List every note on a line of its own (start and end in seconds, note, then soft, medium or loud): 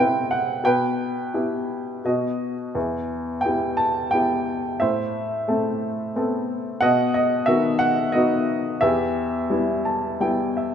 0.00 0.61 C3 medium
0.00 0.66 C4 soft
0.00 0.65 E4 soft
0.00 0.63 B4 soft
0.00 0.66 C5 medium
0.00 0.28 G5 medium
0.31 0.66 F#5 medium
0.64 1.99 B2 medium
0.64 2.00 B4 medium
0.64 2.08 G5 medium
1.34 2.02 B3 soft
1.34 2.02 E4 soft
1.34 2.02 G4 soft
2.05 2.73 B2 medium
2.05 2.72 F#4 soft
2.05 2.55 D#5 medium
2.75 4.78 E2 medium
3.41 4.12 B3 soft
3.41 3.78 G5 medium
3.46 4.12 E4 soft
3.46 4.12 G4 soft
3.77 4.14 A5 medium
4.11 4.80 B3 soft
4.11 4.80 E4 soft
4.11 4.80 G4 soft
4.11 4.83 G5 medium
4.80 6.77 A2 medium
4.80 6.11 C5 soft
4.80 6.10 E5 medium
5.48 6.13 A3 soft
5.48 6.13 C4 soft
5.48 6.13 A4 soft
6.16 6.80 B3 soft
6.16 6.80 C4 soft
6.16 6.80 A4 soft
6.81 8.77 B2 medium
6.81 7.13 D#5 medium
6.81 7.15 F#5 medium
7.14 7.48 D#5 medium
7.46 8.12 D#3 soft
7.46 8.12 B3 soft
7.46 8.12 F#4 medium
7.46 7.81 E5 medium
7.79 8.14 F#5 medium
8.12 8.80 B3 soft
8.12 8.80 D#4 soft
8.12 8.80 F#4 medium
8.12 8.77 D#5 medium
8.81 10.75 E2 medium
8.81 10.16 G4 medium
8.81 10.15 E5 medium
9.50 10.18 G3 soft
9.50 10.18 B3 soft
9.50 10.18 E4 soft
9.85 10.18 A5 medium
10.20 10.75 G3 soft
10.20 10.75 B3 soft
10.20 10.75 E4 soft
10.20 10.54 G5 medium
10.57 10.75 E5 soft